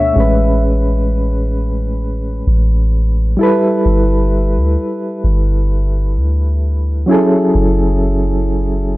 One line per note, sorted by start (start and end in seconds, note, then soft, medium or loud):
0.00 0.12 D2 loud
0.00 0.16 B2 soft
0.00 0.16 A3 soft
0.00 0.17 D4 soft
0.00 0.17 C#5 medium
0.00 0.63 E5 medium
0.14 2.43 A1 loud
0.14 3.34 A2 medium
0.14 3.35 G#3 medium
0.18 3.36 C#4 medium
0.18 3.37 B4 medium
2.47 3.36 A1 loud
3.37 7.03 G3 medium
3.37 7.04 E4 medium
3.41 7.05 A4 medium
3.41 7.06 B4 medium
3.86 4.58 G1 loud
4.57 4.77 D2 loud
5.24 6.18 G1 loud
6.17 7.05 D2 loud
7.06 8.97 F#3 medium
7.06 8.97 C#4 medium
7.06 8.97 E4 medium
7.11 8.97 G#4 medium
7.11 8.97 A4 medium
7.55 8.97 F#1 loud